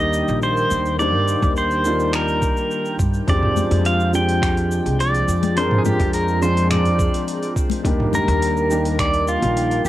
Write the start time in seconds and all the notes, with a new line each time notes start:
Already playing: D#2 D#3 G3 A#3 D4 G4 D#5 G5
0.13 shaker
0.28 A#1, shaker
0.42 C5, shaker
0.57 shaker
0.71 D#2, shaker
0.86 shaker
0.98 D#3 G3 A#3 D4 C5 D5, shaker
1.14 G2
1.28 shaker
1.42 D#2, kick, shaker
1.56 C5, shaker
1.71 shaker
1.84 D#3 G3 A#3 D4 F4, shaker
2.00 shaker
2.13 A#4, finger snap, shaker
2.28 shaker
2.42 kick, shaker
2.57 shaker
2.71 shaker
2.85 shaker
2.99 G2, kick, shaker
3.14 shaker
3.27 F2 F3 G#3 C4 D4 G4 D5, kick, open hi-hat, shaker
3.43 mid tom
3.57 high conga, shaker
3.71 F2, open hi-hat, shaker
3.85 F5, open hi-hat, shaker
4.00 shaker
4.13 F3 G#3 C4 D4 G4 G5, shaker
4.29 open hi-hat, shaker
4.42 finger snap, kick, open hi-hat, shaker
4.57 open hi-hat, shaker
4.71 shaker
4.86 C2, open hi-hat, shaker
5.00 D5, open hi-hat, shaker
5.14 open hi-hat, shaker
5.28 F2, shaker
5.43 open hi-hat, high conga, shaker
5.56 F3 G#3 C4 D4 A#4 C5, open hi-hat, shaker
5.71 G#2, mid tom
5.78 G#4
5.85 G4, high conga, shaker
6.00 F2, kick, open hi-hat, shaker
6.13 A#4, open hi-hat, shaker
6.28 shaker
6.40 F3 G#3 C4 D4 F4 C5, shaker
6.57 open hi-hat, shaker
6.71 D5, finger snap, mid tom, open hi-hat, shaker
6.85 open hi-hat, shaker
6.99 kick, shaker
7.14 open hi-hat, shaker
7.28 open hi-hat, shaker
7.43 open hi-hat, shaker
7.56 kick, shaker
7.70 open hi-hat, high conga, shaker
7.83 D#2 D#3 G3 A#3 D4 G4, kick, open hi-hat, shaker
8.00 mid tom
8.13 A#4, high conga, shaker
8.28 D#2, open hi-hat, shaker
8.42 open hi-hat, shaker
8.57 shaker
8.70 D#3 G3 A#3 D4 G4, shaker
8.85 open hi-hat, shaker
8.99 D5, finger snap, kick, open hi-hat, shaker
9.14 open hi-hat, shaker
9.28 F4, shaker
9.42 A#1, open hi-hat, shaker
9.57 open hi-hat, shaker
9.71 open hi-hat, shaker
9.85 D#2, shaker